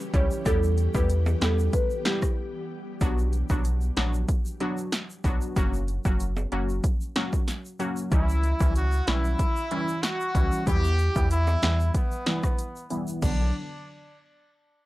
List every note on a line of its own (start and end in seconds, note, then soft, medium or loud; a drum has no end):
0.00 2.97 E3 medium
0.00 2.97 G3 medium
0.00 0.43 C#4 medium
0.00 0.43 G4 medium
0.14 0.28 C#2 loud
0.14 0.43 G3 medium
0.14 0.43 C#4 medium
0.14 0.43 E4 medium
0.14 0.44 G4 medium
0.14 0.27 C#5 medium
0.14 kick loud
0.14 closed hi-hat medium
0.14 shaker soft
0.31 shaker medium
0.45 0.88 E2 loud
0.45 0.61 G3 medium
0.45 0.61 B3 medium
0.45 2.99 B3 medium
0.45 0.61 E4 medium
0.45 0.61 G4 loud
0.45 2.99 G4 medium
0.45 0.71 A4 loud
0.45 kick loud
0.45 closed hi-hat medium
0.45 shaker medium
0.63 shaker medium
0.78 closed hi-hat medium
0.78 shaker soft
0.94 1.35 E2 loud
0.94 1.08 G3 medium
0.94 1.08 B3 medium
0.94 1.08 E4 medium
0.94 1.09 G4 medium
0.94 1.06 B4 medium
0.94 kick loud
0.94 shaker medium
1.10 closed hi-hat medium
1.10 shaker medium
1.26 high timbale medium
1.26 shaker soft
1.41 1.69 E2 loud
1.41 1.57 G3 medium
1.41 1.57 B3 medium
1.41 1.57 E4 medium
1.41 1.57 G4 medium
1.41 1.55 A4 medium
1.41 snare loud
1.41 closed hi-hat medium
1.41 high timbale medium
1.41 shaker medium
1.59 shaker medium
1.73 1.87 B4 medium
1.73 kick loud
1.73 closed hi-hat medium
1.73 shaker medium
1.90 shaker medium
2.05 2.21 G3 medium
2.05 2.21 B3 medium
2.05 2.21 E4 medium
2.05 2.18 G4 medium
2.05 2.21 G4 medium
2.05 snare loud
2.05 closed hi-hat medium
2.22 kick loud
2.22 cross-stick medium
2.22 shaker medium
3.01 3.43 B1 loud
3.01 3.17 F#3 medium
3.01 3.17 B3 medium
3.01 3.17 D4 medium
3.01 3.17 F#4 loud
3.01 kick loud
3.01 closed hi-hat medium
3.01 shaker medium
3.19 shaker medium
3.33 closed hi-hat medium
3.33 shaker soft
3.49 3.90 B1 loud
3.49 3.64 F#3 medium
3.49 3.64 B3 medium
3.49 3.64 D4 medium
3.49 3.64 F#4 medium
3.49 kick loud
3.49 shaker medium
3.65 closed hi-hat medium
3.65 shaker medium
3.81 shaker soft
3.97 4.24 A#1 loud
3.97 4.12 F#3 medium
3.97 4.12 B3 medium
3.97 4.12 D4 medium
3.97 4.13 F#4 medium
3.97 snare loud
3.97 closed hi-hat medium
4.14 shaker medium
4.29 kick loud
4.29 closed hi-hat medium
4.29 shaker medium
4.45 shaker medium
4.60 4.76 F#3 medium
4.60 4.76 B3 medium
4.60 4.76 D4 medium
4.60 4.76 F#4 medium
4.60 closed hi-hat medium
4.78 shaker medium
4.92 snare loud
4.92 closed hi-hat medium
4.92 shaker medium
5.10 shaker medium
5.24 5.39 B1 medium
5.24 5.54 F#3 medium
5.24 5.54 B3 medium
5.24 5.54 D4 medium
5.24 5.54 F#4 medium
5.24 kick loud
5.24 closed hi-hat medium
5.24 shaker soft
5.41 shaker medium
5.56 5.99 F#1 loud
5.56 5.72 F#3 medium
5.56 5.72 A#3 medium
5.56 5.72 C#4 medium
5.56 5.72 F#4 loud
5.56 kick loud
5.56 closed hi-hat medium
5.56 shaker medium
5.74 shaker medium
5.88 closed hi-hat soft
5.88 shaker soft
6.05 6.46 F#1 loud
6.05 6.19 F#3 medium
6.05 6.19 A#3 medium
6.05 6.19 C#4 medium
6.05 6.19 F#4 medium
6.05 kick loud
6.05 shaker medium
6.20 closed hi-hat medium
6.20 shaker medium
6.37 high timbale medium
6.37 shaker soft
6.52 6.80 F#1 medium
6.52 6.68 F#3 medium
6.52 6.68 A#3 medium
6.52 6.68 C#4 medium
6.52 6.68 F#4 medium
6.52 closed hi-hat medium
6.69 shaker medium
6.84 kick loud
6.84 closed hi-hat medium
6.84 shaker medium
7.01 shaker medium
7.16 7.31 F#3 medium
7.16 7.31 A#3 medium
7.16 7.32 C#4 medium
7.16 7.32 F#4 medium
7.16 snare loud
7.16 closed hi-hat medium
7.33 kick medium
7.33 shaker medium
7.48 snare medium
7.48 closed hi-hat medium
7.48 shaker medium
7.65 shaker soft
7.79 8.09 F#3 medium
7.79 8.09 A#3 medium
7.79 8.09 C#4 medium
7.79 8.09 F#4 medium
7.79 closed hi-hat medium
7.79 shaker soft
7.97 shaker medium
8.12 8.54 C#2 loud
8.12 8.27 E3 medium
8.12 8.27 G3 medium
8.12 8.27 C#4 medium
8.12 8.72 E4 loud
8.12 8.27 E4 loud
8.12 kick loud
8.12 closed hi-hat medium
8.12 shaker medium
8.29 shaker medium
8.43 closed hi-hat soft
8.43 shaker soft
8.60 9.01 C#2 medium
8.60 8.74 E3 medium
8.60 8.74 G3 medium
8.60 8.74 C#4 medium
8.60 8.74 E4 medium
8.60 kick loud
8.60 shaker medium
8.75 9.07 F#4 loud
8.75 closed hi-hat medium
8.75 shaker medium
8.92 shaker soft
9.07 9.35 B1 loud
9.07 9.23 E3 medium
9.07 9.23 G3 medium
9.07 9.23 C#4 medium
9.07 10.03 E4 loud
9.07 9.23 E4 medium
9.07 snare loud
9.07 closed hi-hat medium
9.24 shaker medium
9.39 kick loud
9.39 closed hi-hat medium
9.39 shaker medium
9.56 shaker medium
9.71 9.87 E3 medium
9.71 9.87 G3 medium
9.71 9.87 C#4 medium
9.71 9.87 E4 medium
9.71 closed hi-hat medium
9.88 shaker medium
10.03 10.67 F#4 loud
10.03 snare loud
10.03 closed hi-hat medium
10.03 shaker medium
10.21 shaker soft
10.35 10.50 C#2 medium
10.35 10.65 E3 medium
10.35 10.65 G3 medium
10.35 10.65 C#4 medium
10.35 10.65 E4 medium
10.35 kick loud
10.35 closed hi-hat medium
10.35 shaker medium
10.52 shaker medium
10.67 11.09 E2 loud
10.67 10.82 E3 medium
10.67 10.82 G3 medium
10.67 10.83 B3 medium
10.67 10.83 E4 loud
10.67 11.27 G4 loud
10.67 kick loud
10.67 closed hi-hat medium
10.67 shaker medium
10.84 shaker medium
10.99 closed hi-hat medium
10.99 shaker soft
11.15 11.56 E2 loud
11.15 11.29 E3 medium
11.15 11.30 G3 medium
11.15 11.30 B3 medium
11.15 11.30 E4 medium
11.15 kick loud
11.15 shaker medium
11.31 11.95 E4 loud
11.31 closed hi-hat medium
11.31 shaker medium
11.47 high timbale medium
11.47 shaker medium
11.62 11.90 E2 loud
11.62 11.78 E3 medium
11.62 11.78 G3 medium
11.62 11.78 B3 medium
11.62 11.78 E4 medium
11.62 snare loud
11.62 closed hi-hat medium
11.62 high timbale medium
11.80 shaker medium
11.94 12.87 B3 medium
11.94 kick loud
11.94 closed hi-hat medium
11.94 shaker medium
12.12 shaker medium
12.26 12.42 E3 medium
12.26 12.42 G3 medium
12.26 12.42 B3 medium
12.26 12.42 E4 medium
12.26 snare loud
12.26 closed hi-hat medium
12.44 kick medium
12.44 cross-stick medium
12.44 shaker medium
12.59 closed hi-hat medium
12.59 shaker medium
12.76 shaker medium
12.90 13.20 E3 medium
12.90 13.20 G3 medium
12.90 13.20 B3 medium
12.90 13.20 E4 medium
12.90 closed hi-hat medium
12.90 shaker medium
13.07 shaker medium
13.22 13.52 B1 loud
13.22 13.46 D3 medium
13.22 13.47 F#3 medium
13.22 13.47 B3 medium
13.22 13.52 D4 medium
13.22 13.47 D4 loud
13.22 kick loud
13.22 crash medium
13.22 shaker medium